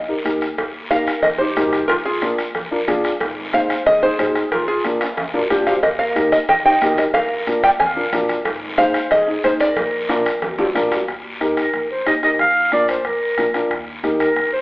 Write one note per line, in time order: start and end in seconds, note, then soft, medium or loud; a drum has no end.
0.00 0.25 A#1 medium
0.00 0.38 D#5 medium
0.08 0.14 D#4 medium
0.08 0.14 G4 medium
0.08 0.14 A#4 medium
0.25 0.40 F2 medium
0.25 0.42 D#4 medium
0.25 0.42 G4 medium
0.25 0.42 A#4 medium
0.25 bombo low medium
0.25 bombo rim medium
0.25 high conga medium
0.25 short guiro medium
0.41 0.56 D#2 medium
0.41 bombo rim medium
0.41 short guiro medium
0.58 1.11 D#2 medium
0.58 bombo low medium
0.58 bombo rim medium
0.58 cowbell medium
0.58 high conga soft
0.58 long guiro medium
0.91 1.08 D#4 medium
0.91 1.08 G4 medium
0.91 1.21 A#4 medium
0.91 1.08 A#4 medium
0.91 1.21 F5 medium
0.91 bombo rim medium
0.91 high conga medium
0.91 short guiro medium
1.07 bombo rim medium
1.07 short guiro medium
1.23 1.50 A#1 medium
1.23 1.31 A#4 medium
1.23 1.28 D#5 loud
1.23 bombo low medium
1.23 bombo rim medium
1.23 cowbell medium
1.23 high conga soft
1.23 low conga medium
1.23 long guiro medium
1.38 1.46 D#4 medium
1.38 1.85 G4 medium
1.38 1.46 G4 medium
1.38 1.90 C5 medium
1.38 1.46 C5 medium
1.56 1.83 C2 medium
1.56 1.79 D#4 medium
1.56 1.80 G4 medium
1.56 1.80 A#4 medium
1.56 bombo rim medium
1.56 high conga medium
1.56 low timbale medium
1.56 short guiro medium
1.73 bombo rim medium
1.73 short guiro medium
1.88 2.42 A#1 loud
1.88 1.96 F4 medium
1.88 1.93 A#4 medium
1.88 bombo low medium
1.88 bombo rim medium
1.88 cowbell loud
1.88 high conga soft
1.88 long guiro medium
2.05 2.36 F4 medium
2.05 2.36 G#4 medium
2.22 2.39 D4 medium
2.22 2.39 F4 medium
2.22 2.40 A#4 medium
2.22 bombo rim medium
2.22 high conga medium
2.22 short guiro medium
2.38 bombo rim medium
2.38 short guiro medium
2.55 2.81 F2 medium
2.55 bombo low medium
2.55 bombo rim medium
2.55 cowbell medium
2.55 high conga soft
2.55 low conga medium
2.55 long guiro medium
2.71 2.77 D4 medium
2.71 2.77 F4 medium
2.71 2.77 A#4 medium
2.87 3.14 F2 medium
2.87 3.11 D4 medium
2.87 3.11 F4 medium
2.87 3.11 G#4 loud
2.87 bombo rim medium
2.87 high conga medium
2.87 low conga medium
2.87 short guiro medium
3.04 bombo rim medium
3.04 short guiro medium
3.20 3.73 G#1 loud
3.20 bombo low medium
3.20 bombo rim medium
3.20 cowbell loud
3.20 high conga soft
3.20 long guiro medium
3.53 3.71 D#4 medium
3.53 3.71 G#4 medium
3.53 3.71 C5 medium
3.53 3.85 C5 medium
3.53 3.86 F5 loud
3.53 bombo rim medium
3.53 high conga medium
3.53 short guiro medium
3.70 bombo rim medium
3.70 short guiro medium
3.86 4.13 D#2 medium
3.86 4.02 G#4 medium
3.86 4.02 D#5 loud
3.86 bombo low medium
3.86 bombo rim medium
3.86 cowbell medium
3.86 high conga soft
3.86 low conga medium
3.86 long guiro medium
4.02 4.08 D#4 medium
4.02 4.09 G#4 medium
4.02 4.49 G#4 medium
4.02 4.48 C5 medium
4.02 4.09 D#5 medium
4.18 4.45 F2 medium
4.18 4.42 D#4 medium
4.18 4.42 G#4 medium
4.18 4.42 C5 medium
4.18 bombo rim medium
4.18 high conga medium
4.18 low timbale medium
4.18 short guiro medium
4.35 bombo rim medium
4.35 short guiro medium
4.52 5.04 A#1 medium
4.52 4.67 F4 medium
4.52 4.67 A#4 medium
4.52 bombo low medium
4.52 bombo rim medium
4.52 cowbell loud
4.52 high conga soft
4.52 low conga medium
4.52 long guiro medium
4.68 4.99 F4 medium
4.68 4.99 G#4 medium
4.84 5.02 D4 medium
4.84 5.02 F4 medium
4.84 5.02 A#4 medium
4.84 bombo rim medium
4.84 high conga medium
4.84 short guiro medium
5.01 bombo rim medium
5.01 high timbale medium
5.01 short guiro medium
5.17 5.44 F2 medium
5.17 bombo low medium
5.17 bombo rim medium
5.17 cowbell medium
5.17 high conga soft
5.17 low conga medium
5.17 high timbale medium
5.17 long guiro medium
5.34 5.40 D4 medium
5.34 5.40 F4 medium
5.34 5.40 A#4 medium
5.34 low timbale medium
5.50 5.77 F2 medium
5.50 5.73 D4 medium
5.50 5.73 F4 medium
5.50 5.73 G4 loud
5.50 bombo rim medium
5.50 high conga medium
5.50 low timbale medium
5.50 short guiro medium
5.67 5.82 C5 medium
5.67 5.82 F5 medium
5.67 bombo rim medium
5.67 low timbale medium
5.67 short guiro medium
5.83 6.36 D#2 loud
5.83 5.91 A#4 medium
5.83 5.88 D#5 medium
5.83 bombo low medium
5.83 bombo rim medium
5.83 cowbell loud
5.83 high conga soft
5.83 long guiro medium
5.99 6.30 A#4 medium
5.99 6.32 F5 medium
6.15 6.33 D#4 medium
6.15 6.33 G4 medium
6.15 6.33 A#4 medium
6.15 bombo rim medium
6.15 high conga medium
6.15 short guiro medium
6.32 6.40 A#4 medium
6.32 6.37 D#5 medium
6.32 bombo rim medium
6.32 short guiro medium
6.49 6.75 A#1 medium
6.49 6.56 D#5 medium
6.49 6.54 G5 medium
6.49 bombo low medium
6.49 bombo rim medium
6.49 cowbell medium
6.49 high conga soft
6.49 low conga medium
6.49 long guiro medium
6.65 6.71 D#4 medium
6.65 6.71 G4 medium
6.65 6.71 C5 medium
6.65 6.96 D#5 medium
6.65 6.96 G5 medium
6.81 7.08 A#1 medium
6.81 7.04 D#4 medium
6.81 7.05 G4 medium
6.81 7.05 A#4 medium
6.81 bombo rim medium
6.81 high conga medium
6.81 low timbale medium
6.81 short guiro medium
6.98 7.06 A#4 medium
6.98 7.04 D#5 medium
6.98 bombo rim medium
6.98 short guiro medium
7.14 7.67 A#1 loud
7.14 7.60 A#4 medium
7.14 7.60 F5 medium
7.14 bombo low medium
7.14 bombo rim medium
7.14 cowbell loud
7.14 high conga soft
7.14 long guiro medium
7.47 7.64 D4 medium
7.47 7.64 F4 medium
7.47 7.65 A#4 medium
7.47 bombo rim medium
7.47 high conga medium
7.47 short guiro medium
7.63 7.72 D5 medium
7.63 7.69 G5 loud
7.63 bombo rim medium
7.63 short guiro medium
7.79 8.06 F2 medium
7.79 8.26 F5 medium
7.79 8.26 G#5 loud
7.79 bombo low medium
7.79 bombo rim medium
7.79 cowbell medium
7.79 high conga soft
7.79 low conga medium
7.79 long guiro medium
7.96 8.02 D4 medium
7.96 8.02 F4 medium
7.96 8.02 A#4 medium
8.13 8.39 F2 medium
8.13 8.36 D4 medium
8.13 8.36 F4 medium
8.13 8.36 A#4 medium
8.13 bombo rim medium
8.13 high conga medium
8.13 low conga medium
8.13 low timbale medium
8.13 short guiro medium
8.29 bombo rim medium
8.29 short guiro medium
8.45 8.98 G#1 loud
8.45 bombo low medium
8.45 bombo rim medium
8.45 cowbell loud
8.45 high conga soft
8.45 long guiro medium
8.78 8.95 D#4 medium
8.78 8.95 G#4 medium
8.78 8.96 C5 medium
8.78 9.09 C5 medium
8.78 9.11 F5 medium
8.78 bombo rim medium
8.78 high conga medium
8.78 short guiro medium
8.94 bombo rim medium
8.94 short guiro medium
9.11 9.37 D#2 medium
9.11 9.42 G#4 medium
9.11 9.42 D#5 medium
9.11 bombo low medium
9.11 bombo rim medium
9.11 cowbell medium
9.11 high conga soft
9.11 low conga medium
9.11 long guiro medium
9.28 9.33 D#4 medium
9.28 9.33 G#4 medium
9.28 9.34 D#5 medium
9.43 9.70 D#2 medium
9.43 9.67 D#4 medium
9.43 9.67 G#4 medium
9.43 9.52 G#4 medium
9.43 9.49 C5 medium
9.43 9.67 C5 medium
9.43 bombo rim medium
9.43 high conga medium
9.43 short guiro medium
9.60 10.72 A#4 medium
9.60 10.71 D5 loud
9.60 bombo rim medium
9.60 short guiro medium
9.76 10.29 A#1 loud
9.76 bombo low medium
9.76 bombo rim medium
9.76 cowbell loud
9.76 high conga soft
9.76 long guiro medium
10.09 10.26 D4 medium
10.09 10.27 F4 medium
10.09 10.27 A#4 medium
10.09 bombo rim medium
10.09 high conga medium
10.09 high timbale loud
10.09 short guiro medium
10.26 bombo rim medium
10.26 short guiro medium
10.42 10.69 F2 medium
10.42 bombo low medium
10.42 bombo rim medium
10.42 cowbell medium
10.42 high conga soft
10.42 low conga medium
10.42 low timbale medium
10.42 long guiro medium
10.58 10.64 D4 medium
10.58 10.64 F4 medium
10.58 10.65 G4 medium
10.58 low timbale loud
10.75 11.02 F2 medium
10.75 10.98 D4 medium
10.75 10.98 F4 medium
10.75 10.98 A#4 medium
10.75 bombo low medium
10.75 bombo rim medium
10.75 high conga medium
10.75 short guiro medium
10.91 bombo rim medium
10.91 low timbale medium
10.91 short guiro medium
11.08 11.61 D#2 medium
11.08 bombo low medium
11.08 bombo rim medium
11.08 high conga soft
11.08 long guiro medium
11.40 11.64 D#4 medium
11.40 11.64 G4 medium
11.40 11.64 A#4 medium
11.40 bombo rim medium
11.40 high conga medium
11.40 short guiro medium
11.57 11.88 A#4 medium
11.57 bombo rim medium
11.57 short guiro medium
11.73 12.00 A#1 medium
11.73 bombo low medium
11.73 bombo rim medium
11.73 high conga soft
11.73 long guiro medium
11.91 12.06 C5 medium
12.06 12.33 D#2 medium
12.06 12.12 D#4 medium
12.06 12.12 G4 medium
12.06 12.13 C5 medium
12.06 12.15 D#5 medium
12.06 bombo rim medium
12.06 high conga medium
12.06 short guiro medium
12.23 12.39 D#4 medium
12.23 12.39 G4 medium
12.23 12.40 A#4 medium
12.23 12.31 D#5 medium
12.23 bombo rim medium
12.23 short guiro medium
12.39 12.92 A#1 loud
12.39 12.70 F5 loud
12.39 bombo low medium
12.39 bombo rim medium
12.39 long guiro medium
12.72 12.95 D4 medium
12.72 12.95 F4 medium
12.72 12.96 A#4 medium
12.72 12.88 D5 medium
12.72 bombo rim medium
12.72 high conga medium
12.72 short guiro medium
12.88 13.08 C5 medium
12.88 bombo rim medium
12.88 short guiro medium
13.05 13.31 F2 medium
13.05 13.55 A#4 medium
13.05 bombo low medium
13.05 bombo rim medium
13.05 high conga soft
13.05 long guiro medium
13.38 13.64 A#1 medium
13.38 13.44 D4 medium
13.38 13.44 F4 medium
13.38 13.44 A#4 medium
13.38 bombo rim medium
13.38 high conga medium
13.38 short guiro medium
13.54 13.71 D4 medium
13.54 13.71 F4 medium
13.54 13.71 A#4 medium
13.54 bombo rim medium
13.54 short guiro medium
13.71 14.23 D#2 medium
13.71 bombo low medium
13.71 bombo rim medium
13.71 high conga soft
13.71 long guiro medium
14.03 14.27 D#4 medium
14.03 14.27 G4 medium
14.03 14.27 A#4 medium
14.03 bombo rim medium
14.03 high conga medium
14.03 short guiro medium
14.20 14.51 A#4 medium
14.20 bombo rim medium
14.20 short guiro medium
14.36 14.62 A#1 medium
14.36 bombo low medium
14.36 bombo rim medium
14.36 high conga soft
14.36 long guiro medium
14.53 14.60 C5 medium